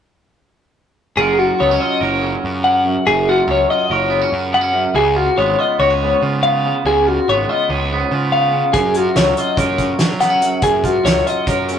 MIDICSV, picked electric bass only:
0, 0, Header, 1, 2, 480
1, 0, Start_track
1, 0, Key_signature, 6, "major"
1, 0, Tempo, 420168
1, 1335, Time_signature, 9, 3, 24, 8
1, 13468, End_track
2, 0, Start_track
2, 0, Title_t, "Picked electric bass"
2, 0, Program_c, 0, 34
2, 1332, Note_on_c, 0, 30, 85
2, 1714, Note_off_c, 0, 30, 0
2, 1836, Note_on_c, 0, 37, 83
2, 2019, Note_off_c, 0, 37, 0
2, 2296, Note_on_c, 0, 30, 83
2, 2677, Note_off_c, 0, 30, 0
2, 2787, Note_on_c, 0, 42, 66
2, 3354, Note_off_c, 0, 42, 0
2, 3507, Note_on_c, 0, 30, 90
2, 3885, Note_off_c, 0, 30, 0
2, 3968, Note_on_c, 0, 37, 80
2, 4163, Note_off_c, 0, 37, 0
2, 4452, Note_on_c, 0, 30, 78
2, 4836, Note_off_c, 0, 30, 0
2, 4935, Note_on_c, 0, 42, 74
2, 5508, Note_off_c, 0, 42, 0
2, 5646, Note_on_c, 0, 37, 80
2, 6033, Note_off_c, 0, 37, 0
2, 6142, Note_on_c, 0, 32, 81
2, 6333, Note_off_c, 0, 32, 0
2, 6615, Note_on_c, 0, 37, 76
2, 6998, Note_off_c, 0, 37, 0
2, 7106, Note_on_c, 0, 49, 65
2, 7675, Note_off_c, 0, 49, 0
2, 7822, Note_on_c, 0, 37, 78
2, 8202, Note_off_c, 0, 37, 0
2, 8320, Note_on_c, 0, 32, 88
2, 8504, Note_off_c, 0, 32, 0
2, 8786, Note_on_c, 0, 37, 77
2, 9165, Note_off_c, 0, 37, 0
2, 9267, Note_on_c, 0, 49, 71
2, 9835, Note_off_c, 0, 49, 0
2, 9982, Note_on_c, 0, 42, 84
2, 10361, Note_off_c, 0, 42, 0
2, 10462, Note_on_c, 0, 37, 80
2, 10652, Note_off_c, 0, 37, 0
2, 10936, Note_on_c, 0, 42, 80
2, 11318, Note_off_c, 0, 42, 0
2, 11417, Note_on_c, 0, 54, 70
2, 11987, Note_off_c, 0, 54, 0
2, 12133, Note_on_c, 0, 42, 85
2, 12514, Note_off_c, 0, 42, 0
2, 12618, Note_on_c, 0, 37, 81
2, 12807, Note_off_c, 0, 37, 0
2, 13106, Note_on_c, 0, 42, 76
2, 13468, Note_off_c, 0, 42, 0
2, 13468, End_track
0, 0, End_of_file